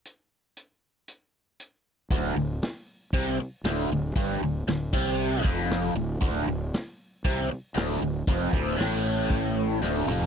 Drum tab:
HH |x---x---x---x---|o---o---o---o---|o---o---o---o---|o---o---o---o---|
SD |----------------|----o-------o---|----o-------o---|----o-------o---|
T2 |----------------|----------------|----------------|----------------|
FT |----------------|----------------|----------------|----------------|
BD |----------------|o-------o-------|o-----o---o-----|o-------o-------|

HH |o---o---o-------|
SD |----o-------o---|
T2 |--------------o-|
FT |---------------o|
BD |o-o-----o-------|